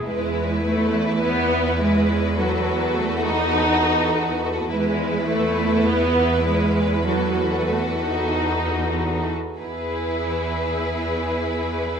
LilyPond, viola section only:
\new Staff \with { instrumentName = "Viola section" } { \time 4/4 \key e \major \tempo 4 = 102 gis4 a4 b4 gis4 | fis4 a8 dis'2 r8 | gis4 a4 b4 gis4 | fis4 a8 dis'2 r8 |
e'1 | }